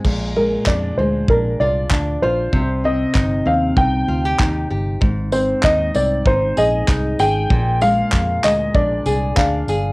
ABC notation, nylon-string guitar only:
X:1
M:4/4
L:1/16
Q:"Swing 16ths" 1/4=96
K:Bbmix
V:1 name="Nylon-string guitar"
B,,2 A,2 D2 A,2 D2 F2 D2 F2 | C,2 C2 E2 C2 E2 F G E2 G2 | A,,2 C2 E2 C2 E2 A2 E2 A2 | B,,2 A,4 A,2 D2 A2 D2 A2 |]